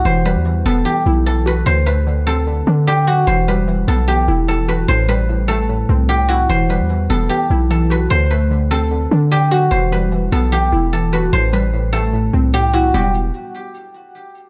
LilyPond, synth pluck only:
\new Staff \with { instrumentName = "Synth pluck" } { \clef bass \time 4/4 \key e \minor \tempo 4 = 149 e8 g8 e8 b8 e8 e'8 e8 fis'8 | d8 a8 d8 c'8 d8 d'8 d8 fis'8 | e8 g8 e8 b8 e8 e'8 e8 fis'8 | a,8 g8 a,8 a8 a,8 c'8 a,8 e'8 |
e8 g8 e8 b8 e8 e'8 e8 fis'8 | d8 a8 d8 c'8 d8 d'8 d8 fis'8 | e8 g8 e8 b8 e8 e'8 e8 fis'8 | a,8 g8 a,8 a8 a,8 c'8 a,8 e'8 |
<g b e' fis'>8 r2. r8 | }